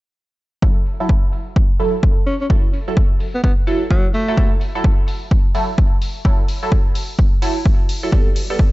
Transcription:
0.62 0.78 F#3 medium
0.62 0.78 E4 medium
0.62 0.78 A4 medium
0.62 kick loud
0.86 open hi-hat loud
1.00 1.11 F#3 medium
1.00 1.11 E4 medium
1.00 1.11 A4 loud
1.09 kick loud
1.33 open hi-hat loud
1.56 kick loud
1.80 1.95 F#3 medium
1.80 1.95 E4 medium
1.80 1.95 A4 loud
1.80 open hi-hat loud
2.03 kick loud
2.26 2.36 C#4 medium
2.26 open hi-hat loud
2.41 2.47 C#4 medium
2.50 2.65 F#3 medium
2.50 2.65 E4 medium
2.50 2.65 A4 loud
2.50 kick loud
2.73 open hi-hat loud
2.88 2.99 F#3 medium
2.88 2.99 E4 medium
2.88 2.99 A4 loud
2.97 kick loud
3.20 open hi-hat loud
3.35 3.40 B3 medium
3.44 3.53 B3 medium
3.44 kick loud
3.67 3.83 F#3 loud
3.67 3.83 E4 medium
3.67 3.83 A4 loud
3.67 open hi-hat loud
3.91 4.07 F#3 medium
3.91 kick loud
4.14 4.52 A3 medium
4.14 open hi-hat loud
4.28 4.36 F#3 medium
4.28 4.36 E4 medium
4.28 4.36 A4 loud
4.37 4.53 F#3 medium
4.37 4.53 E4 medium
4.37 4.53 A4 medium
4.37 kick loud
4.61 open hi-hat loud
4.75 4.86 F#3 loud
4.75 4.86 E4 medium
4.75 4.86 A4 loud
4.84 kick loud
5.08 open hi-hat loud
5.31 kick loud
5.55 5.70 F#3 medium
5.55 5.70 E4 medium
5.55 5.70 A4 loud
5.55 open hi-hat loud
5.78 kick loud
6.02 open hi-hat loud
6.25 6.40 F#3 medium
6.25 6.40 E4 medium
6.25 6.40 A4 loud
6.25 kick loud
6.48 open hi-hat loud
6.63 6.74 F#3 medium
6.63 6.74 E4 medium
6.63 6.74 A4 loud
6.72 kick loud
6.95 open hi-hat loud
7.19 kick loud
7.42 7.58 F#3 loud
7.42 7.58 E4 medium
7.42 7.58 A4 loud
7.42 open hi-hat loud
7.66 kick loud
7.89 open hi-hat loud
8.03 8.11 F#3 medium
8.03 8.11 E4 medium
8.03 8.11 A4 loud
8.12 8.28 B3 medium
8.12 8.28 A4 medium
8.12 kick loud
8.36 open hi-hat loud
8.50 8.61 G3 loud
8.50 8.61 B3 medium
8.50 8.61 A4 loud
8.59 kick loud

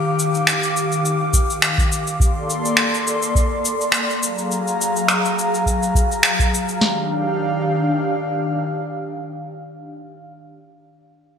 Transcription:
0.00 2.16 D#3 medium
0.00 2.16 G4 medium
0.00 2.16 F5 medium
0.00 2.16 D6 medium
0.19 cabasa medium
0.35 cabasa soft
0.47 finger snap medium
0.47 cabasa medium
0.63 cabasa soft
0.77 cabasa medium
0.92 cabasa soft
1.05 cabasa medium
1.33 kick medium
1.33 cabasa medium
1.50 cabasa soft
1.62 finger snap medium
1.62 cabasa medium
1.78 kick loud
1.78 cabasa soft
1.92 cabasa medium
2.07 cabasa soft
2.20 4.20 A#3 medium
2.20 4.20 A4 medium
2.20 4.20 D5 medium
2.20 4.20 C6 medium
2.20 kick loud
2.20 cabasa medium
2.50 cabasa medium
2.65 cabasa soft
2.77 finger snap medium
2.77 cabasa soft
2.94 cabasa soft
3.07 cabasa medium
3.22 cabasa soft
3.35 kick medium
3.35 cabasa medium
3.65 cabasa medium
3.81 cabasa soft
3.92 finger snap medium
3.92 cabasa medium
4.10 cabasa soft
4.23 6.79 F#3 medium
4.23 6.79 G#4 medium
4.23 6.79 F5 medium
4.23 6.79 A#5 medium
4.23 cabasa medium
4.38 cabasa soft
4.51 cabasa medium
4.67 cabasa soft
4.81 cabasa medium
4.96 cabasa soft
5.08 finger snap medium
5.08 cabasa soft
5.25 cabasa soft
5.39 cabasa medium
5.54 cabasa soft
5.66 kick medium
5.66 cabasa medium
5.83 cabasa soft
5.95 kick medium
5.95 cabasa medium
6.12 cabasa soft
6.23 finger snap loud
6.23 cabasa medium
6.39 kick medium
6.39 cabasa soft
6.54 cabasa medium
6.69 cabasa soft
6.81 9.88 D#3 medium
6.81 9.89 D4 medium
6.81 9.88 G4 medium
6.81 9.88 F5 medium
6.81 snare medium

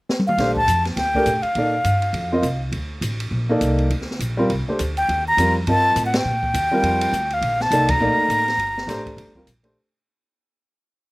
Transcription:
0.09 snare medium
0.19 high tom medium
0.27 0.54 F5 medium
0.27 mid tom medium
0.38 0.67 A#1 medium
0.38 0.55 A3 medium
0.38 0.55 D4 medium
0.38 0.55 G4 medium
0.38 0.55 C5 medium
0.38 snare soft
0.38 ride soft
0.56 0.83 A5 loud
0.56 kick soft
0.67 0.96 F2 medium
0.67 hi-hat pedal medium
0.67 ride medium
0.85 snare soft
0.85 ride soft
0.96 1.25 D2 medium
0.96 1.44 G5 medium
0.96 snare soft
0.96 ride medium
1.15 1.26 A3 medium
1.15 1.26 D4 medium
1.15 1.26 G4 medium
1.15 1.26 A#4 medium
1.15 kick soft
1.26 1.43 A2 medium
1.26 hi-hat pedal soft
1.26 ride soft
1.42 2.61 F5 medium
1.42 muted upright bass stroke soft
1.42 ride soft
1.55 1.84 A#2 medium
1.55 1.72 A#3 medium
1.55 1.73 D#4 soft
1.55 1.73 A4 soft
1.55 1.73 D5 medium
1.55 ride soft
1.84 2.12 G2 medium
1.84 hi-hat pedal medium
1.84 ride medium
2.02 ride soft
2.13 2.42 F2 medium
2.13 ride soft
2.32 2.43 C4 medium
2.32 2.43 F4 medium
2.32 2.43 A#4 medium
2.32 2.44 D#5 medium
2.42 2.71 C2 medium
2.42 hi-hat pedal soft
2.42 ride medium
2.72 3.01 D2 medium
2.72 ride medium
3.01 3.30 A1 medium
3.01 hi-hat pedal medium
3.01 ride medium
3.20 ride medium
3.31 3.60 A#1 medium
3.49 3.88 A#3 medium
3.49 3.89 D#4 medium
3.49 3.89 A4 medium
3.49 3.89 D5 medium
3.61 3.89 C2 medium
3.61 hi-hat pedal soft
3.61 ride medium
3.78 ride soft
3.90 4.19 D2 medium
3.90 ride medium
4.01 snare soft
4.11 snare soft
4.19 4.48 A#1 medium
4.19 hi-hat pedal medium
4.19 ride medium
4.37 4.48 G3 medium
4.37 4.49 C4 medium
4.37 4.49 F4 medium
4.37 4.49 A#4 medium
4.50 4.66 C2 medium
4.50 ride medium
4.68 4.78 A3 medium
4.68 4.78 D4 soft
4.68 4.79 G4 soft
4.68 4.79 C5 medium
4.68 muted upright bass stroke soft
4.79 5.08 D2 medium
4.79 hi-hat pedal soft
4.79 ride medium
4.97 5.24 G5 medium
4.97 ride soft
5.09 5.37 D#2 medium
5.09 ride medium
5.28 5.54 A#5 medium
5.37 5.66 F2 medium
5.37 5.54 G3 medium
5.37 5.54 C4 soft
5.37 5.54 F4 soft
5.37 5.55 A#4 medium
5.37 hi-hat pedal medium
5.37 ride medium
5.67 5.95 G2 medium
5.67 6.11 C4 soft
5.67 6.11 F4 soft
5.67 6.11 A#4 soft
5.67 6.11 D#5 medium
5.67 6.03 A5 loud
5.67 ride medium
5.96 6.24 A2 medium
5.96 hi-hat pedal soft
5.96 ride medium
6.06 6.18 F#5 medium
6.14 7.35 G5 medium
6.14 snare medium
6.14 ride medium
6.25 6.53 A#2 medium
6.43 kick soft
6.54 6.82 D#2 medium
6.54 hi-hat pedal medium
6.54 ride medium
6.72 7.10 G3 medium
6.72 7.11 C4 medium
6.72 7.11 F4 medium
6.72 7.11 A#4 medium
6.83 7.12 F2 medium
6.83 ride medium
7.01 ride medium
7.13 7.41 D2 medium
7.13 hi-hat pedal soft
7.30 7.63 F5 medium
7.30 ride soft
7.41 7.70 A#1 medium
7.41 ride medium
7.61 7.92 A5 medium
7.61 snare soft
7.71 7.99 C2 medium
7.71 7.87 A#3 medium
7.71 7.88 D#4 medium
7.71 7.88 A4 medium
7.71 7.88 D5 medium
7.71 hi-hat pedal medium
7.71 ride medium
7.88 9.47 A#5 loud
7.88 kick medium
7.88 ride medium
8.00 8.17 A#1 medium
8.00 8.44 A3 medium
8.00 8.44 A#3 medium
8.00 8.44 D#4 medium
8.00 8.45 D5 medium
8.17 muted upright bass stroke soft
8.28 8.57 A1 medium
8.28 hi-hat pedal medium
8.28 ride medium
8.48 snare soft
8.48 ride soft
8.58 8.86 G1 medium
8.58 ride medium
8.78 snare soft
8.87 9.16 A1 medium
8.87 9.31 A3 medium
8.87 9.31 D4 medium
8.87 9.31 G4 medium
8.87 9.32 C5 medium
8.87 snare soft
8.87 hi-hat pedal soft
8.87 ride medium
9.06 kick soft
9.06 ride soft
9.17 9.45 G1 medium
9.17 ride medium
9.35 9.46 G3 soft
9.35 9.46 C4 soft
9.35 9.46 F4 soft
9.35 9.46 A#4 medium
9.35 kick soft
9.46 9.74 A#1 medium
9.46 hi-hat pedal medium
9.46 ride medium
9.63 9.74 A3 medium
9.63 9.75 D4 medium
9.63 9.75 G4 medium
9.63 9.75 C5 medium
9.63 ride soft

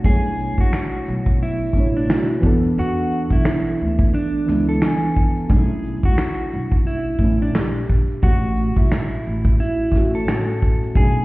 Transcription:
0.03 0.50 B1 loud
0.03 1.24 B2 medium
0.03 1.24 A3 medium
0.03 1.25 D4 medium
0.03 0.56 G#4 medium
0.03 kick loud
0.03 closed hi-hat loud
0.08 1.26 E4 medium
0.08 1.27 C#5 medium
0.39 closed hi-hat medium
0.58 0.70 C#2 medium
0.58 1.38 F#4 medium
0.58 kick medium
0.58 closed hi-hat soft
0.73 finger snap loud
0.73 snare loud
0.73 closed hi-hat medium
1.06 1.65 B1 loud
1.06 closed hi-hat medium
1.26 kick medium
1.26 closed hi-hat soft
1.43 1.93 E4 medium
1.43 closed hi-hat medium
1.73 2.03 A1 medium
1.73 2.04 B2 medium
1.73 2.05 A3 medium
1.73 2.06 D4 medium
1.73 kick medium
1.73 closed hi-hat medium
1.78 2.07 E4 medium
1.78 2.08 C#5 medium
1.97 2.27 D4 medium
1.97 closed hi-hat soft
2.05 2.41 B2 medium
2.05 2.42 A3 medium
2.05 2.43 D4 medium
2.10 2.44 E4 medium
2.10 2.44 F#4 medium
2.10 finger snap medium
2.10 snare loud
2.10 closed hi-hat medium
2.32 closed hi-hat soft
2.40 2.60 E2 medium
2.40 3.61 E3 medium
2.40 3.62 B3 medium
2.40 kick loud
2.44 3.63 D4 medium
2.44 3.64 A4 loud
2.44 closed hi-hat medium
2.65 closed hi-hat soft
2.78 3.23 E2 loud
2.78 3.29 F#4 medium
2.78 closed hi-hat medium
2.98 closed hi-hat soft
3.11 closed hi-hat medium
3.30 3.43 B1 medium
3.30 4.10 E4 medium
3.30 kick medium
3.30 closed hi-hat soft
3.45 finger snap loud
3.45 snare loud
3.45 closed hi-hat medium
3.65 closed hi-hat soft
3.78 4.09 D2 medium
3.78 closed hi-hat soft
3.99 kick medium
3.99 closed hi-hat soft
4.14 4.65 D4 medium
4.14 closed hi-hat medium
4.46 4.77 C#2 medium
4.46 4.77 E3 medium
4.46 4.78 B3 medium
4.46 snare soft
4.46 closed hi-hat medium
4.50 4.79 D4 medium
4.50 4.80 E4 medium
4.69 5.51 A4 medium
4.69 closed hi-hat soft
4.80 5.41 E3 medium
4.80 5.42 B3 medium
4.80 finger snap medium
4.80 snare loud
4.80 closed hi-hat medium
4.84 5.43 D4 medium
4.84 5.44 G#5 medium
5.16 kick medium
5.16 closed hi-hat medium
5.37 closed hi-hat soft
5.47 5.96 B1 loud
5.47 6.68 B2 medium
5.47 6.69 A3 medium
5.47 6.70 C#4 medium
5.47 6.01 G#4 medium
5.47 kick loud
5.47 closed hi-hat loud
5.52 6.71 D4 medium
5.52 5.59 D#4 medium
5.60 6.75 E4 medium
5.83 closed hi-hat medium
6.03 6.16 C#2 medium
6.03 6.83 F#4 medium
6.03 kick medium
6.03 closed hi-hat soft
6.18 finger snap loud
6.18 snare loud
6.18 closed hi-hat medium
6.51 7.10 B1 loud
6.51 closed hi-hat soft
6.72 kick loud
6.72 closed hi-hat soft
6.87 7.38 E4 medium
6.87 closed hi-hat medium
7.19 7.48 A1 medium
7.19 7.50 B2 medium
7.19 7.50 A3 medium
7.19 7.51 C#4 medium
7.19 kick medium
7.19 closed hi-hat medium
7.23 7.52 D4 medium
7.23 7.53 E4 medium
7.42 7.72 D4 medium
7.42 closed hi-hat soft
7.53 7.84 A#1 medium
7.53 8.14 A#2 medium
7.53 8.15 A#3 medium
7.53 finger snap medium
7.53 snare medium
7.53 closed hi-hat medium
7.57 8.16 D4 medium
7.57 8.17 G4 medium
7.76 closed hi-hat soft
7.89 8.06 A#1 medium
7.89 kick medium
7.89 closed hi-hat medium
8.10 closed hi-hat soft
8.22 8.69 A1 loud
8.22 9.42 A2 medium
8.22 9.43 A3 medium
8.22 8.78 F#4 loud
8.22 kick loud
8.22 closed hi-hat loud
8.26 9.44 C#4 medium
8.26 9.45 F#4 medium
8.57 closed hi-hat medium
8.76 8.89 B1 medium
8.76 9.56 E4 medium
8.76 kick loud
8.76 closed hi-hat soft
8.92 finger snap medium
8.92 snare loud
8.92 closed hi-hat medium
9.12 closed hi-hat soft
9.25 9.55 A1 medium
9.25 closed hi-hat soft
9.45 kick loud
9.45 closed hi-hat soft
9.60 10.11 E4 medium
9.60 closed hi-hat medium
9.82 closed hi-hat soft
9.92 10.21 A1 medium
9.92 10.22 A2 medium
9.92 10.23 A3 medium
9.92 10.24 C#4 medium
9.92 kick medium
9.92 snare soft
9.92 closed hi-hat medium
9.97 10.25 F#4 medium
10.15 10.92 A4 medium
10.15 closed hi-hat soft
10.25 10.86 A2 medium
10.25 10.87 A3 medium
10.25 10.88 C#4 medium
10.25 finger snap medium
10.25 snare loud
10.29 10.90 F#4 medium
10.29 closed hi-hat medium
10.50 closed hi-hat soft
10.62 kick loud
10.62 closed hi-hat medium
10.84 closed hi-hat soft
10.94 11.25 B1 loud
10.94 11.25 B2 medium
10.94 11.25 A3 medium
10.94 11.25 C#4 medium
10.94 11.25 G#4 loud
10.94 kick loud
10.94 closed hi-hat loud
10.99 11.25 D4 medium
10.99 11.25 E4 medium

